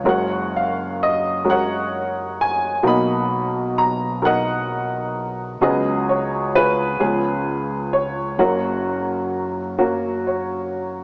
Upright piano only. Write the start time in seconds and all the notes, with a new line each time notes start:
0.05 F#1 F#2 G#3 C#4 F#4 A#4 C#5 F#5
0.09 A#4
0.56 F5
1.03 D#5
1.44 G#3 C#4 F#4 A#4
1.50 A#4 C#5 F#5
2.41 G#5
2.83 B1 B2 F#3 A#3 B3 D#4
2.87 D#5 F#5 B5
3.78 A#5
4.22 F#3 B3 D#4 A#4 F#5
4.26 A#4 D#5
5.61 C#2 C#3 F#3 B3 C#4 F#4 G#4 B4 D#5
6.09 C#5
6.55 F4 G#4 B4
7.00 C#2 C#3 F3 B3 C#4 G#4
7.93 C#5
8.39 F#1 F#2 F#3 A#3 C#4 F#4 A#4 C#5 F#5
9.79 F#3 A#3 C#4 F#4
10.27 C#5